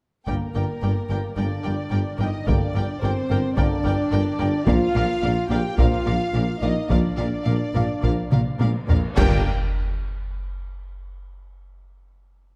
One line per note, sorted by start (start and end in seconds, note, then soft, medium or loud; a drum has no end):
0.26 0.38 G1 soft
0.26 0.36 G1 soft
0.26 0.35 G2 soft
0.26 0.47 D3 soft
0.26 1.33 A#3 medium
0.26 0.47 A#3 soft
0.26 1.33 A#4 soft
0.26 0.35 A#4 soft
0.26 0.35 D5 soft
0.26 0.34 G5 soft
0.26 taiko soft
0.54 0.65 G1 soft
0.54 0.62 G1 soft
0.54 0.63 G2 soft
0.54 0.63 A#4 soft
0.54 0.63 D5 soft
0.54 0.63 G5 soft
0.82 0.90 G1 soft
0.82 0.94 G1 soft
0.82 0.90 G2 soft
0.82 0.91 A#4 soft
0.82 0.91 D5 soft
0.82 0.91 G5 soft
1.09 1.20 G1 soft
1.09 1.18 G1 soft
1.09 1.18 G2 soft
1.09 1.18 A#4 soft
1.09 1.18 D5 soft
1.09 1.19 G5 soft
1.37 1.45 G1 soft
1.37 1.48 G1 soft
1.37 1.45 G2 soft
1.37 1.57 D3 soft
1.37 1.57 A#3 soft
1.37 2.18 D4 medium
1.37 1.45 A#4 soft
1.37 1.45 D5 soft
1.37 2.18 D5 medium
1.37 1.46 G5 soft
1.63 1.73 G1 soft
1.63 1.76 G1 soft
1.63 1.73 G2 soft
1.63 1.71 A#4 soft
1.63 1.71 D5 soft
1.63 1.72 G5 soft
1.90 1.99 G1 soft
1.90 2.03 G1 soft
1.90 2.00 G2 soft
1.90 1.98 A#4 soft
1.90 1.98 D5 soft
1.90 2.01 G5 soft
2.18 2.30 G1 soft
2.18 2.28 G1 soft
2.18 2.27 G2 soft
2.18 2.47 D#4 medium
2.18 2.26 A#4 soft
2.18 2.26 D5 soft
2.18 2.47 D#5 medium
2.18 2.29 G5 soft
2.46 2.58 G1 medium
2.46 2.55 G1 medium
2.46 2.55 G2 medium
2.46 2.68 D3 soft
2.46 2.68 A#3 soft
2.46 3.02 D4 medium
2.46 2.54 A#4 soft
2.46 2.54 D5 medium
2.46 3.02 D5 medium
2.46 2.56 G5 soft
2.46 taiko medium
2.74 2.85 G1 soft
2.74 2.83 G1 medium
2.74 2.83 G2 soft
2.74 2.83 A#4 soft
2.74 2.83 D5 soft
2.74 2.84 G5 soft
3.01 3.13 G1 medium
3.01 3.10 G1 medium
3.01 3.10 G2 soft
3.01 3.56 C4 medium
3.01 3.10 A#4 soft
3.01 3.57 C5 medium
3.01 3.10 D5 soft
3.01 3.12 G5 soft
3.30 3.41 G1 medium
3.30 3.38 G1 medium
3.30 3.38 G2 medium
3.30 3.38 A#4 soft
3.30 3.38 D5 soft
3.30 3.39 G5 medium
3.56 3.68 G1 medium
3.56 3.66 G1 medium
3.56 3.64 G2 medium
3.56 3.77 D3 medium
3.56 3.77 A#3 medium
3.56 4.67 D4 medium
3.56 3.65 A#4 medium
3.56 4.65 D5 medium
3.56 3.65 D5 medium
3.56 3.66 G5 medium
3.56 taiko medium
3.83 3.96 G1 medium
3.83 3.93 G1 medium
3.83 3.93 G2 medium
3.83 3.92 A#4 medium
3.83 3.91 D5 medium
3.83 3.93 G5 medium
4.11 4.20 G1 medium
4.11 4.24 G1 medium
4.11 4.20 G2 medium
4.11 4.20 A#4 medium
4.11 4.19 D5 medium
4.11 4.21 G5 medium
4.38 4.47 G1 medium
4.38 4.51 G1 medium
4.38 4.48 G2 medium
4.38 4.46 A#4 medium
4.38 4.47 D5 medium
4.38 4.48 G5 medium
4.65 4.75 A#1 medium
4.65 4.78 A#1 medium
4.65 4.75 A#2 medium
4.65 4.87 F3 medium
4.65 4.87 A#3 medium
4.65 5.47 F4 loud
4.65 4.75 A#4 medium
4.65 4.75 D5 medium
4.65 5.50 F5 medium
4.65 4.76 F5 medium
4.65 taiko medium
4.95 5.03 A#1 medium
4.95 5.06 A#1 medium
4.95 5.03 A#2 medium
4.95 5.04 A#4 medium
4.95 5.04 D5 medium
4.95 5.04 F5 medium
5.22 5.30 A#1 medium
5.22 5.34 A#1 medium
5.22 5.31 A#2 medium
5.22 5.31 A#4 medium
5.22 5.30 D5 medium
5.22 5.31 F5 medium
5.49 5.58 A#1 medium
5.49 5.61 A#1 medium
5.49 5.58 A#2 medium
5.49 5.77 G4 medium
5.49 5.59 A#4 medium
5.49 5.59 D5 medium
5.49 5.59 F5 medium
5.49 5.78 G5 medium
5.75 5.86 A#1 medium
5.75 5.90 A#1 medium
5.75 5.86 A#2 medium
5.75 5.98 F3 medium
5.75 5.98 A#3 medium
5.75 6.59 F4 medium
5.75 5.86 A#4 medium
5.75 5.86 D5 medium
5.75 6.62 F5 medium
5.75 taiko medium
5.79 5.87 F5 medium
6.06 6.14 A#1 medium
6.06 6.18 A#1 medium
6.06 6.14 A#2 medium
6.06 6.14 A#4 medium
6.06 6.15 D5 medium
6.06 6.15 F5 soft
6.33 6.41 A#1 medium
6.33 6.45 A#1 medium
6.33 6.42 A#2 soft
6.33 6.43 A#4 soft
6.33 6.42 D5 soft
6.33 6.42 F5 soft
6.59 6.70 A#1 medium
6.59 6.73 A#1 soft
6.59 6.70 A#2 medium
6.59 6.88 D#4 medium
6.59 6.70 A#4 soft
6.59 6.70 D5 soft
6.59 6.90 D#5 medium
6.59 6.71 F5 soft
6.89 6.97 A#1 soft
6.89 7.01 A#1 medium
6.89 6.98 A#2 soft
6.89 7.10 F3 soft
6.89 7.10 A#3 soft
6.89 8.59 D4 medium
6.89 6.98 A#4 soft
6.89 8.60 D5 medium
6.89 6.99 D5 soft
6.89 6.98 F5 soft
6.89 taiko medium
7.18 7.26 A#1 soft
7.18 7.30 A#1 soft
7.18 7.26 A#2 soft
7.18 7.27 A#4 soft
7.18 7.27 D5 soft
7.18 7.26 F5 soft
7.45 7.58 A#1 medium
7.45 7.54 A#1 soft
7.45 7.54 A#2 soft
7.45 7.55 A#4 soft
7.45 7.54 D5 soft
7.45 7.53 F5 soft
7.74 7.85 A#1 medium
7.74 7.82 A#1 soft
7.74 7.82 A#2 soft
7.74 7.82 A#4 soft
7.74 7.82 D5 soft
7.74 7.83 F5 soft
7.74 taiko low-mid soft
8.02 8.14 A#1 soft
8.02 8.11 A#1 medium
8.02 8.11 A#2 medium
8.02 8.23 F3 soft
8.02 8.23 A#3 soft
8.02 8.11 A#4 soft
8.02 8.10 D5 soft
8.02 8.12 F5 soft
8.02 taiko medium
8.31 8.42 A#1 soft
8.31 8.40 A#1 medium
8.31 8.39 A#2 soft
8.31 8.39 A#4 soft
8.31 8.39 D5 soft
8.31 8.40 F5 soft
8.31 taiko mid medium
8.59 8.72 A#1 medium
8.59 8.69 A#1 soft
8.59 8.68 A#2 soft
8.59 8.67 A#4 soft
8.59 8.68 D5 soft
8.59 8.69 F5 soft
8.59 taiko high medium
8.88 9.00 A#1 soft
8.88 8.98 A#1 medium
8.88 8.96 A#2 soft
8.88 8.97 A#4 soft
8.88 8.97 D5 soft
8.88 8.98 F5 soft
8.88 taiko low medium
9.17 9.42 G1 medium
9.17 9.50 G1 medium
9.17 9.49 G2 medium
9.17 9.42 D3 medium
9.17 9.42 A#3 medium
9.17 9.50 D4 medium
9.17 9.41 G4 medium
9.17 9.49 A#4 medium
9.17 9.49 G5 medium
9.17 9.50 G5 medium
9.17 concert bass drum medium
9.17 taiko loud
9.17 crash medium